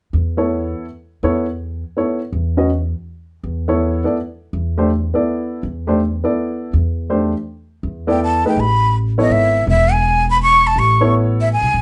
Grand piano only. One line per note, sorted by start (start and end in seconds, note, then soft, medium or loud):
0.37 0.84 B3 medium
0.37 0.84 E4 medium
0.37 0.85 A4 soft
0.37 0.85 C#5 medium
1.23 1.45 B3 medium
1.23 1.45 E4 medium
1.23 1.45 A4 medium
1.23 1.46 C#5 medium
1.97 2.18 B3 medium
1.97 2.19 E4 soft
1.97 2.19 A4 soft
1.97 2.19 C#5 medium
2.57 2.69 C#4 medium
2.57 2.69 F#4 soft
2.57 2.69 B4 soft
2.57 2.69 D#5 medium
3.68 4.02 B3 medium
3.68 4.02 E4 medium
3.68 4.02 A4 medium
3.68 4.03 C#5 medium
4.04 4.16 B3 medium
4.04 4.16 E4 soft
4.04 4.16 A4 soft
4.04 4.17 D5 medium
4.77 4.89 A3 medium
4.77 4.89 D4 medium
4.77 4.90 G4 medium
4.77 4.90 C5 medium
5.14 5.61 B3 medium
5.14 5.62 E4 medium
5.14 5.61 A4 medium
5.14 5.62 D5 medium
5.87 5.99 A3 medium
5.87 5.99 D4 medium
5.87 5.99 G4 medium
5.87 6.00 C5 medium
6.24 6.71 B3 medium
6.24 6.71 E4 soft
6.24 6.71 A4 soft
6.24 6.71 D5 medium
7.10 7.32 A3 medium
7.10 7.32 D4 medium
7.10 7.32 G4 medium
7.10 7.32 C5 medium
8.07 8.42 B3 medium
8.07 8.42 E4 medium
8.07 8.42 A4 medium
8.07 8.42 D5 medium
8.45 8.56 A3 medium
8.45 8.56 D#4 medium
8.45 8.56 G#4 soft
8.45 8.56 B4 medium
9.18 9.65 B3 medium
9.18 9.65 E4 medium
9.18 9.65 A4 medium
9.18 9.65 C#5 medium
11.01 11.48 B3 medium
11.01 11.48 E4 medium
11.01 11.48 A4 medium
11.01 11.48 C#5 medium